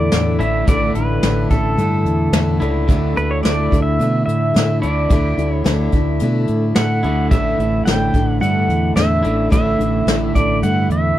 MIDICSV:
0, 0, Header, 1, 6, 480
1, 0, Start_track
1, 0, Tempo, 552486
1, 593, Time_signature, 4, 2, 24, 8
1, 9721, End_track
2, 0, Start_track
2, 0, Title_t, "Pedal steel guitar"
2, 0, Program_c, 0, 26
2, 0, Note_on_c, 0, 74, 103
2, 347, Note_off_c, 0, 74, 0
2, 350, Note_on_c, 0, 76, 84
2, 593, Note_off_c, 0, 76, 0
2, 596, Note_on_c, 0, 74, 97
2, 817, Note_off_c, 0, 74, 0
2, 827, Note_on_c, 0, 71, 78
2, 1309, Note_on_c, 0, 69, 77
2, 1323, Note_off_c, 0, 71, 0
2, 2235, Note_off_c, 0, 69, 0
2, 2757, Note_on_c, 0, 71, 71
2, 2874, Note_on_c, 0, 73, 75
2, 2877, Note_off_c, 0, 71, 0
2, 2976, Note_off_c, 0, 73, 0
2, 2979, Note_on_c, 0, 74, 98
2, 3319, Note_off_c, 0, 74, 0
2, 3322, Note_on_c, 0, 76, 91
2, 3687, Note_off_c, 0, 76, 0
2, 3698, Note_on_c, 0, 76, 93
2, 4184, Note_off_c, 0, 76, 0
2, 4188, Note_on_c, 0, 74, 75
2, 4804, Note_off_c, 0, 74, 0
2, 4804, Note_on_c, 0, 73, 75
2, 5114, Note_off_c, 0, 73, 0
2, 5872, Note_on_c, 0, 78, 98
2, 6318, Note_off_c, 0, 78, 0
2, 6352, Note_on_c, 0, 76, 95
2, 6821, Note_off_c, 0, 76, 0
2, 6824, Note_on_c, 0, 79, 96
2, 7189, Note_off_c, 0, 79, 0
2, 7189, Note_on_c, 0, 78, 96
2, 7305, Note_off_c, 0, 78, 0
2, 7308, Note_on_c, 0, 78, 101
2, 7780, Note_off_c, 0, 78, 0
2, 7784, Note_on_c, 0, 76, 92
2, 8261, Note_off_c, 0, 76, 0
2, 8271, Note_on_c, 0, 76, 91
2, 8994, Note_on_c, 0, 74, 76
2, 9014, Note_off_c, 0, 76, 0
2, 9237, Note_on_c, 0, 78, 102
2, 9240, Note_off_c, 0, 74, 0
2, 9482, Note_off_c, 0, 78, 0
2, 9486, Note_on_c, 0, 76, 73
2, 9721, Note_off_c, 0, 76, 0
2, 9721, End_track
3, 0, Start_track
3, 0, Title_t, "Steel-string acoustic guitar"
3, 0, Program_c, 1, 25
3, 0, Note_on_c, 1, 50, 62
3, 0, Note_on_c, 1, 57, 59
3, 0, Note_on_c, 1, 62, 58
3, 0, Note_on_c, 1, 64, 65
3, 94, Note_off_c, 1, 50, 0
3, 101, Note_on_c, 1, 45, 68
3, 105, Note_on_c, 1, 50, 68
3, 106, Note_off_c, 1, 62, 0
3, 108, Note_off_c, 1, 57, 0
3, 110, Note_on_c, 1, 62, 77
3, 112, Note_on_c, 1, 57, 75
3, 116, Note_off_c, 1, 64, 0
3, 119, Note_on_c, 1, 64, 80
3, 332, Note_off_c, 1, 64, 0
3, 342, Note_on_c, 1, 64, 51
3, 345, Note_off_c, 1, 62, 0
3, 347, Note_off_c, 1, 45, 0
3, 349, Note_off_c, 1, 50, 0
3, 352, Note_off_c, 1, 57, 0
3, 355, Note_on_c, 1, 62, 46
3, 366, Note_on_c, 1, 57, 41
3, 582, Note_off_c, 1, 57, 0
3, 584, Note_on_c, 1, 45, 68
3, 587, Note_off_c, 1, 62, 0
3, 587, Note_off_c, 1, 64, 0
3, 588, Note_on_c, 1, 50, 72
3, 592, Note_on_c, 1, 57, 69
3, 598, Note_on_c, 1, 62, 78
3, 604, Note_on_c, 1, 64, 73
3, 827, Note_off_c, 1, 64, 0
3, 828, Note_off_c, 1, 45, 0
3, 830, Note_off_c, 1, 50, 0
3, 832, Note_off_c, 1, 57, 0
3, 835, Note_off_c, 1, 62, 0
3, 838, Note_on_c, 1, 64, 49
3, 855, Note_on_c, 1, 62, 45
3, 862, Note_on_c, 1, 57, 41
3, 1068, Note_off_c, 1, 57, 0
3, 1070, Note_on_c, 1, 45, 73
3, 1075, Note_off_c, 1, 64, 0
3, 1077, Note_off_c, 1, 62, 0
3, 1078, Note_on_c, 1, 50, 80
3, 1078, Note_on_c, 1, 57, 73
3, 1087, Note_on_c, 1, 62, 80
3, 1094, Note_on_c, 1, 64, 73
3, 1294, Note_off_c, 1, 64, 0
3, 1303, Note_off_c, 1, 62, 0
3, 1304, Note_on_c, 1, 64, 50
3, 1311, Note_off_c, 1, 45, 0
3, 1314, Note_on_c, 1, 62, 48
3, 1315, Note_off_c, 1, 50, 0
3, 1315, Note_off_c, 1, 57, 0
3, 1327, Note_on_c, 1, 57, 42
3, 1537, Note_off_c, 1, 57, 0
3, 1541, Note_on_c, 1, 50, 52
3, 1547, Note_off_c, 1, 62, 0
3, 1547, Note_on_c, 1, 57, 61
3, 1548, Note_off_c, 1, 64, 0
3, 1557, Note_on_c, 1, 62, 57
3, 1568, Note_on_c, 1, 64, 65
3, 2026, Note_off_c, 1, 50, 0
3, 2031, Note_on_c, 1, 45, 80
3, 2035, Note_off_c, 1, 57, 0
3, 2038, Note_on_c, 1, 50, 79
3, 2038, Note_on_c, 1, 57, 84
3, 2041, Note_off_c, 1, 62, 0
3, 2044, Note_off_c, 1, 64, 0
3, 2045, Note_on_c, 1, 62, 81
3, 2048, Note_on_c, 1, 64, 87
3, 2241, Note_off_c, 1, 64, 0
3, 2252, Note_on_c, 1, 64, 58
3, 2255, Note_off_c, 1, 62, 0
3, 2265, Note_on_c, 1, 62, 50
3, 2270, Note_off_c, 1, 57, 0
3, 2271, Note_off_c, 1, 45, 0
3, 2274, Note_off_c, 1, 50, 0
3, 2280, Note_on_c, 1, 57, 50
3, 2496, Note_off_c, 1, 57, 0
3, 2501, Note_off_c, 1, 64, 0
3, 2502, Note_on_c, 1, 50, 82
3, 2504, Note_off_c, 1, 62, 0
3, 2507, Note_on_c, 1, 57, 83
3, 2515, Note_on_c, 1, 62, 92
3, 2516, Note_on_c, 1, 64, 87
3, 2723, Note_off_c, 1, 64, 0
3, 2733, Note_off_c, 1, 62, 0
3, 2733, Note_on_c, 1, 64, 49
3, 2744, Note_on_c, 1, 62, 46
3, 2746, Note_off_c, 1, 50, 0
3, 2748, Note_off_c, 1, 57, 0
3, 2760, Note_on_c, 1, 57, 41
3, 2972, Note_off_c, 1, 57, 0
3, 2974, Note_off_c, 1, 62, 0
3, 2980, Note_on_c, 1, 50, 69
3, 2981, Note_off_c, 1, 64, 0
3, 2982, Note_on_c, 1, 57, 70
3, 2985, Note_on_c, 1, 62, 81
3, 2997, Note_on_c, 1, 64, 81
3, 3208, Note_off_c, 1, 64, 0
3, 3218, Note_on_c, 1, 64, 50
3, 3223, Note_off_c, 1, 62, 0
3, 3225, Note_off_c, 1, 50, 0
3, 3226, Note_off_c, 1, 57, 0
3, 3233, Note_on_c, 1, 62, 48
3, 3240, Note_on_c, 1, 57, 42
3, 3464, Note_off_c, 1, 57, 0
3, 3464, Note_off_c, 1, 64, 0
3, 3469, Note_on_c, 1, 50, 61
3, 3471, Note_off_c, 1, 62, 0
3, 3475, Note_on_c, 1, 57, 58
3, 3488, Note_on_c, 1, 62, 60
3, 3496, Note_on_c, 1, 64, 66
3, 3937, Note_off_c, 1, 50, 0
3, 3947, Note_on_c, 1, 50, 70
3, 3953, Note_off_c, 1, 57, 0
3, 3956, Note_on_c, 1, 57, 72
3, 3959, Note_off_c, 1, 62, 0
3, 3962, Note_on_c, 1, 62, 72
3, 3969, Note_off_c, 1, 64, 0
3, 3972, Note_on_c, 1, 64, 75
3, 4179, Note_off_c, 1, 64, 0
3, 4186, Note_off_c, 1, 62, 0
3, 4188, Note_off_c, 1, 50, 0
3, 4190, Note_on_c, 1, 64, 52
3, 4193, Note_off_c, 1, 57, 0
3, 4196, Note_on_c, 1, 62, 44
3, 4211, Note_on_c, 1, 57, 44
3, 4428, Note_on_c, 1, 50, 69
3, 4429, Note_off_c, 1, 57, 0
3, 4429, Note_off_c, 1, 64, 0
3, 4430, Note_off_c, 1, 62, 0
3, 4439, Note_on_c, 1, 57, 66
3, 4441, Note_on_c, 1, 62, 80
3, 4446, Note_on_c, 1, 64, 86
3, 4659, Note_off_c, 1, 64, 0
3, 4668, Note_off_c, 1, 50, 0
3, 4669, Note_on_c, 1, 64, 54
3, 4674, Note_off_c, 1, 57, 0
3, 4675, Note_off_c, 1, 62, 0
3, 4685, Note_on_c, 1, 62, 45
3, 4695, Note_on_c, 1, 57, 41
3, 4900, Note_off_c, 1, 57, 0
3, 4903, Note_on_c, 1, 50, 76
3, 4909, Note_off_c, 1, 64, 0
3, 4910, Note_off_c, 1, 62, 0
3, 4910, Note_on_c, 1, 57, 76
3, 4920, Note_on_c, 1, 62, 89
3, 4920, Note_on_c, 1, 64, 91
3, 5143, Note_off_c, 1, 64, 0
3, 5146, Note_off_c, 1, 50, 0
3, 5150, Note_off_c, 1, 57, 0
3, 5153, Note_on_c, 1, 64, 54
3, 5155, Note_off_c, 1, 62, 0
3, 5168, Note_on_c, 1, 62, 51
3, 5179, Note_on_c, 1, 57, 47
3, 5391, Note_off_c, 1, 64, 0
3, 5392, Note_on_c, 1, 50, 63
3, 5393, Note_off_c, 1, 57, 0
3, 5399, Note_off_c, 1, 62, 0
3, 5403, Note_on_c, 1, 57, 72
3, 5412, Note_on_c, 1, 62, 65
3, 5414, Note_on_c, 1, 64, 70
3, 5856, Note_off_c, 1, 50, 0
3, 5866, Note_on_c, 1, 50, 64
3, 5874, Note_off_c, 1, 57, 0
3, 5877, Note_on_c, 1, 57, 73
3, 5878, Note_off_c, 1, 62, 0
3, 5881, Note_off_c, 1, 64, 0
3, 5882, Note_on_c, 1, 62, 79
3, 5884, Note_on_c, 1, 64, 72
3, 6094, Note_off_c, 1, 64, 0
3, 6104, Note_on_c, 1, 64, 55
3, 6107, Note_off_c, 1, 62, 0
3, 6108, Note_off_c, 1, 50, 0
3, 6113, Note_off_c, 1, 57, 0
3, 6118, Note_on_c, 1, 62, 46
3, 6131, Note_on_c, 1, 57, 44
3, 6347, Note_off_c, 1, 64, 0
3, 6350, Note_off_c, 1, 57, 0
3, 6351, Note_on_c, 1, 45, 70
3, 6354, Note_off_c, 1, 62, 0
3, 6356, Note_on_c, 1, 50, 80
3, 6360, Note_on_c, 1, 57, 73
3, 6363, Note_on_c, 1, 62, 77
3, 6367, Note_on_c, 1, 64, 77
3, 6572, Note_off_c, 1, 64, 0
3, 6582, Note_on_c, 1, 64, 46
3, 6588, Note_off_c, 1, 62, 0
3, 6591, Note_off_c, 1, 45, 0
3, 6593, Note_off_c, 1, 50, 0
3, 6595, Note_off_c, 1, 57, 0
3, 6598, Note_on_c, 1, 62, 46
3, 6610, Note_on_c, 1, 57, 45
3, 6822, Note_off_c, 1, 57, 0
3, 6826, Note_off_c, 1, 64, 0
3, 6827, Note_off_c, 1, 62, 0
3, 6827, Note_on_c, 1, 45, 70
3, 6828, Note_on_c, 1, 50, 68
3, 6832, Note_on_c, 1, 57, 71
3, 6838, Note_on_c, 1, 62, 75
3, 6843, Note_on_c, 1, 64, 73
3, 7054, Note_off_c, 1, 64, 0
3, 7065, Note_on_c, 1, 64, 49
3, 7069, Note_off_c, 1, 45, 0
3, 7069, Note_off_c, 1, 50, 0
3, 7071, Note_off_c, 1, 57, 0
3, 7072, Note_off_c, 1, 62, 0
3, 7083, Note_on_c, 1, 62, 48
3, 7093, Note_on_c, 1, 57, 41
3, 7300, Note_on_c, 1, 50, 54
3, 7301, Note_off_c, 1, 57, 0
3, 7307, Note_off_c, 1, 62, 0
3, 7308, Note_off_c, 1, 64, 0
3, 7311, Note_on_c, 1, 57, 62
3, 7318, Note_on_c, 1, 62, 67
3, 7325, Note_on_c, 1, 64, 60
3, 7777, Note_off_c, 1, 50, 0
3, 7781, Note_on_c, 1, 45, 72
3, 7785, Note_off_c, 1, 57, 0
3, 7788, Note_on_c, 1, 50, 71
3, 7788, Note_on_c, 1, 57, 73
3, 7793, Note_off_c, 1, 62, 0
3, 7795, Note_off_c, 1, 64, 0
3, 7796, Note_on_c, 1, 62, 76
3, 7798, Note_on_c, 1, 64, 85
3, 8007, Note_off_c, 1, 64, 0
3, 8017, Note_on_c, 1, 64, 47
3, 8020, Note_off_c, 1, 62, 0
3, 8026, Note_off_c, 1, 45, 0
3, 8030, Note_off_c, 1, 50, 0
3, 8030, Note_off_c, 1, 57, 0
3, 8030, Note_on_c, 1, 62, 44
3, 8046, Note_on_c, 1, 57, 42
3, 8256, Note_on_c, 1, 45, 70
3, 8258, Note_off_c, 1, 57, 0
3, 8264, Note_off_c, 1, 64, 0
3, 8265, Note_off_c, 1, 62, 0
3, 8266, Note_on_c, 1, 50, 76
3, 8268, Note_on_c, 1, 57, 79
3, 8275, Note_on_c, 1, 62, 82
3, 8278, Note_on_c, 1, 64, 85
3, 8492, Note_off_c, 1, 64, 0
3, 8503, Note_on_c, 1, 64, 46
3, 8504, Note_off_c, 1, 45, 0
3, 8508, Note_off_c, 1, 62, 0
3, 8509, Note_off_c, 1, 50, 0
3, 8510, Note_off_c, 1, 57, 0
3, 8518, Note_on_c, 1, 62, 46
3, 8529, Note_on_c, 1, 57, 40
3, 8747, Note_off_c, 1, 64, 0
3, 8748, Note_off_c, 1, 57, 0
3, 8748, Note_on_c, 1, 45, 72
3, 8751, Note_off_c, 1, 62, 0
3, 8756, Note_on_c, 1, 50, 75
3, 8759, Note_on_c, 1, 57, 84
3, 8762, Note_on_c, 1, 62, 68
3, 8771, Note_on_c, 1, 64, 74
3, 8973, Note_off_c, 1, 64, 0
3, 8984, Note_on_c, 1, 64, 52
3, 8989, Note_off_c, 1, 62, 0
3, 8990, Note_off_c, 1, 45, 0
3, 8994, Note_off_c, 1, 50, 0
3, 8995, Note_off_c, 1, 57, 0
3, 8999, Note_on_c, 1, 62, 45
3, 9012, Note_on_c, 1, 57, 43
3, 9228, Note_off_c, 1, 64, 0
3, 9232, Note_off_c, 1, 57, 0
3, 9232, Note_on_c, 1, 50, 56
3, 9236, Note_off_c, 1, 62, 0
3, 9243, Note_on_c, 1, 57, 58
3, 9248, Note_on_c, 1, 62, 62
3, 9257, Note_on_c, 1, 64, 59
3, 9710, Note_off_c, 1, 50, 0
3, 9720, Note_off_c, 1, 57, 0
3, 9720, Note_off_c, 1, 62, 0
3, 9721, Note_off_c, 1, 64, 0
3, 9721, End_track
4, 0, Start_track
4, 0, Title_t, "Clean electric guitar"
4, 0, Program_c, 2, 27
4, 0, Note_on_c, 2, 45, 84
4, 0, Note_on_c, 2, 50, 80
4, 0, Note_on_c, 2, 57, 81
4, 0, Note_on_c, 2, 62, 87
4, 0, Note_on_c, 2, 64, 85
4, 334, Note_off_c, 2, 64, 0
4, 339, Note_off_c, 2, 45, 0
4, 340, Note_off_c, 2, 50, 0
4, 342, Note_off_c, 2, 62, 0
4, 352, Note_off_c, 2, 57, 0
4, 354, Note_on_c, 2, 50, 71
4, 363, Note_on_c, 2, 45, 65
4, 560, Note_off_c, 2, 45, 0
4, 568, Note_off_c, 2, 50, 0
4, 2281, Note_on_c, 2, 50, 72
4, 2284, Note_on_c, 2, 45, 66
4, 2485, Note_off_c, 2, 50, 0
4, 2503, Note_off_c, 2, 45, 0
4, 4220, Note_on_c, 2, 50, 71
4, 4420, Note_off_c, 2, 50, 0
4, 6137, Note_on_c, 2, 50, 66
4, 6341, Note_off_c, 2, 50, 0
4, 8037, Note_on_c, 2, 50, 65
4, 8049, Note_on_c, 2, 45, 64
4, 8252, Note_off_c, 2, 45, 0
4, 8260, Note_off_c, 2, 50, 0
4, 9721, End_track
5, 0, Start_track
5, 0, Title_t, "Fingered electric bass"
5, 0, Program_c, 3, 33
5, 0, Note_on_c, 3, 40, 83
5, 103, Note_off_c, 3, 40, 0
5, 111, Note_on_c, 3, 40, 76
5, 338, Note_off_c, 3, 40, 0
5, 344, Note_on_c, 3, 33, 83
5, 574, Note_off_c, 3, 33, 0
5, 586, Note_on_c, 3, 33, 90
5, 815, Note_off_c, 3, 33, 0
5, 824, Note_on_c, 3, 33, 83
5, 1053, Note_off_c, 3, 33, 0
5, 1066, Note_on_c, 3, 33, 82
5, 1294, Note_off_c, 3, 33, 0
5, 1308, Note_on_c, 3, 33, 78
5, 1535, Note_off_c, 3, 33, 0
5, 1542, Note_on_c, 3, 43, 81
5, 1772, Note_off_c, 3, 43, 0
5, 1782, Note_on_c, 3, 40, 80
5, 2012, Note_off_c, 3, 40, 0
5, 2018, Note_on_c, 3, 40, 82
5, 2249, Note_off_c, 3, 40, 0
5, 2268, Note_on_c, 3, 37, 81
5, 2495, Note_off_c, 3, 37, 0
5, 2508, Note_on_c, 3, 38, 88
5, 2735, Note_off_c, 3, 38, 0
5, 2759, Note_on_c, 3, 38, 89
5, 2980, Note_off_c, 3, 38, 0
5, 3000, Note_on_c, 3, 38, 76
5, 3221, Note_off_c, 3, 38, 0
5, 3231, Note_on_c, 3, 38, 80
5, 3456, Note_off_c, 3, 38, 0
5, 3468, Note_on_c, 3, 47, 80
5, 3694, Note_off_c, 3, 47, 0
5, 3713, Note_on_c, 3, 45, 79
5, 3937, Note_off_c, 3, 45, 0
5, 3959, Note_on_c, 3, 45, 84
5, 4180, Note_off_c, 3, 45, 0
5, 4199, Note_on_c, 3, 38, 82
5, 4420, Note_off_c, 3, 38, 0
5, 4437, Note_on_c, 3, 38, 93
5, 4659, Note_off_c, 3, 38, 0
5, 4671, Note_on_c, 3, 38, 84
5, 4896, Note_off_c, 3, 38, 0
5, 4914, Note_on_c, 3, 38, 76
5, 5138, Note_off_c, 3, 38, 0
5, 5150, Note_on_c, 3, 38, 74
5, 5375, Note_off_c, 3, 38, 0
5, 5400, Note_on_c, 3, 47, 80
5, 5621, Note_off_c, 3, 47, 0
5, 5639, Note_on_c, 3, 45, 78
5, 5860, Note_off_c, 3, 45, 0
5, 5878, Note_on_c, 3, 45, 82
5, 6099, Note_off_c, 3, 45, 0
5, 6116, Note_on_c, 3, 38, 86
5, 6339, Note_off_c, 3, 38, 0
5, 6352, Note_on_c, 3, 33, 86
5, 6577, Note_off_c, 3, 33, 0
5, 6589, Note_on_c, 3, 33, 90
5, 6815, Note_off_c, 3, 33, 0
5, 6827, Note_on_c, 3, 33, 73
5, 7054, Note_off_c, 3, 33, 0
5, 7072, Note_on_c, 3, 33, 73
5, 7297, Note_off_c, 3, 33, 0
5, 7305, Note_on_c, 3, 43, 85
5, 7533, Note_off_c, 3, 43, 0
5, 7548, Note_on_c, 3, 40, 82
5, 7775, Note_off_c, 3, 40, 0
5, 7785, Note_on_c, 3, 40, 77
5, 8013, Note_off_c, 3, 40, 0
5, 8033, Note_on_c, 3, 33, 79
5, 8258, Note_off_c, 3, 33, 0
5, 8275, Note_on_c, 3, 33, 90
5, 8499, Note_off_c, 3, 33, 0
5, 8503, Note_on_c, 3, 33, 86
5, 8730, Note_off_c, 3, 33, 0
5, 8735, Note_on_c, 3, 33, 78
5, 8968, Note_off_c, 3, 33, 0
5, 8994, Note_on_c, 3, 33, 76
5, 9219, Note_off_c, 3, 33, 0
5, 9233, Note_on_c, 3, 43, 84
5, 9458, Note_off_c, 3, 43, 0
5, 9465, Note_on_c, 3, 40, 80
5, 9694, Note_off_c, 3, 40, 0
5, 9721, End_track
6, 0, Start_track
6, 0, Title_t, "Drums"
6, 99, Note_on_c, 9, 42, 77
6, 102, Note_on_c, 9, 38, 102
6, 186, Note_off_c, 9, 42, 0
6, 189, Note_off_c, 9, 38, 0
6, 351, Note_on_c, 9, 42, 59
6, 437, Note_off_c, 9, 42, 0
6, 585, Note_on_c, 9, 42, 86
6, 589, Note_on_c, 9, 36, 107
6, 671, Note_off_c, 9, 42, 0
6, 676, Note_off_c, 9, 36, 0
6, 824, Note_on_c, 9, 42, 61
6, 911, Note_off_c, 9, 42, 0
6, 1064, Note_on_c, 9, 42, 76
6, 1067, Note_on_c, 9, 38, 100
6, 1151, Note_off_c, 9, 42, 0
6, 1154, Note_off_c, 9, 38, 0
6, 1306, Note_on_c, 9, 42, 56
6, 1309, Note_on_c, 9, 36, 78
6, 1392, Note_off_c, 9, 42, 0
6, 1395, Note_off_c, 9, 36, 0
6, 1549, Note_on_c, 9, 42, 74
6, 1635, Note_off_c, 9, 42, 0
6, 1789, Note_on_c, 9, 42, 53
6, 1876, Note_off_c, 9, 42, 0
6, 2022, Note_on_c, 9, 42, 74
6, 2025, Note_on_c, 9, 38, 102
6, 2109, Note_off_c, 9, 42, 0
6, 2112, Note_off_c, 9, 38, 0
6, 2270, Note_on_c, 9, 42, 56
6, 2357, Note_off_c, 9, 42, 0
6, 2509, Note_on_c, 9, 36, 97
6, 2512, Note_on_c, 9, 42, 75
6, 2596, Note_off_c, 9, 36, 0
6, 2598, Note_off_c, 9, 42, 0
6, 2751, Note_on_c, 9, 42, 60
6, 2838, Note_off_c, 9, 42, 0
6, 2995, Note_on_c, 9, 42, 77
6, 2997, Note_on_c, 9, 38, 99
6, 3082, Note_off_c, 9, 42, 0
6, 3084, Note_off_c, 9, 38, 0
6, 3234, Note_on_c, 9, 36, 77
6, 3240, Note_on_c, 9, 42, 55
6, 3321, Note_off_c, 9, 36, 0
6, 3327, Note_off_c, 9, 42, 0
6, 3480, Note_on_c, 9, 42, 77
6, 3567, Note_off_c, 9, 42, 0
6, 3723, Note_on_c, 9, 42, 57
6, 3810, Note_off_c, 9, 42, 0
6, 3961, Note_on_c, 9, 42, 81
6, 3964, Note_on_c, 9, 38, 105
6, 4048, Note_off_c, 9, 42, 0
6, 4051, Note_off_c, 9, 38, 0
6, 4196, Note_on_c, 9, 42, 61
6, 4283, Note_off_c, 9, 42, 0
6, 4432, Note_on_c, 9, 42, 81
6, 4435, Note_on_c, 9, 36, 106
6, 4519, Note_off_c, 9, 42, 0
6, 4522, Note_off_c, 9, 36, 0
6, 4678, Note_on_c, 9, 42, 60
6, 4765, Note_off_c, 9, 42, 0
6, 4912, Note_on_c, 9, 42, 76
6, 4914, Note_on_c, 9, 38, 104
6, 4998, Note_off_c, 9, 42, 0
6, 5001, Note_off_c, 9, 38, 0
6, 5144, Note_on_c, 9, 42, 54
6, 5153, Note_on_c, 9, 36, 76
6, 5231, Note_off_c, 9, 42, 0
6, 5239, Note_off_c, 9, 36, 0
6, 5383, Note_on_c, 9, 42, 75
6, 5470, Note_off_c, 9, 42, 0
6, 5626, Note_on_c, 9, 42, 53
6, 5713, Note_off_c, 9, 42, 0
6, 5866, Note_on_c, 9, 42, 74
6, 5869, Note_on_c, 9, 38, 103
6, 5953, Note_off_c, 9, 42, 0
6, 5956, Note_off_c, 9, 38, 0
6, 6117, Note_on_c, 9, 42, 53
6, 6204, Note_off_c, 9, 42, 0
6, 6352, Note_on_c, 9, 42, 76
6, 6355, Note_on_c, 9, 36, 110
6, 6438, Note_off_c, 9, 42, 0
6, 6442, Note_off_c, 9, 36, 0
6, 6601, Note_on_c, 9, 42, 56
6, 6688, Note_off_c, 9, 42, 0
6, 6838, Note_on_c, 9, 42, 70
6, 6840, Note_on_c, 9, 38, 103
6, 6925, Note_off_c, 9, 42, 0
6, 6927, Note_off_c, 9, 38, 0
6, 7072, Note_on_c, 9, 36, 79
6, 7074, Note_on_c, 9, 42, 53
6, 7159, Note_off_c, 9, 36, 0
6, 7160, Note_off_c, 9, 42, 0
6, 7318, Note_on_c, 9, 42, 75
6, 7405, Note_off_c, 9, 42, 0
6, 7555, Note_on_c, 9, 42, 52
6, 7642, Note_off_c, 9, 42, 0
6, 7787, Note_on_c, 9, 42, 80
6, 7790, Note_on_c, 9, 38, 100
6, 7874, Note_off_c, 9, 42, 0
6, 7877, Note_off_c, 9, 38, 0
6, 8030, Note_on_c, 9, 42, 55
6, 8117, Note_off_c, 9, 42, 0
6, 8272, Note_on_c, 9, 36, 104
6, 8272, Note_on_c, 9, 42, 83
6, 8358, Note_off_c, 9, 42, 0
6, 8359, Note_off_c, 9, 36, 0
6, 8517, Note_on_c, 9, 42, 68
6, 8604, Note_off_c, 9, 42, 0
6, 8755, Note_on_c, 9, 42, 80
6, 8757, Note_on_c, 9, 38, 102
6, 8842, Note_off_c, 9, 42, 0
6, 8844, Note_off_c, 9, 38, 0
6, 8995, Note_on_c, 9, 42, 59
6, 8996, Note_on_c, 9, 36, 72
6, 9082, Note_off_c, 9, 42, 0
6, 9083, Note_off_c, 9, 36, 0
6, 9235, Note_on_c, 9, 42, 77
6, 9321, Note_off_c, 9, 42, 0
6, 9472, Note_on_c, 9, 42, 58
6, 9559, Note_off_c, 9, 42, 0
6, 9721, End_track
0, 0, End_of_file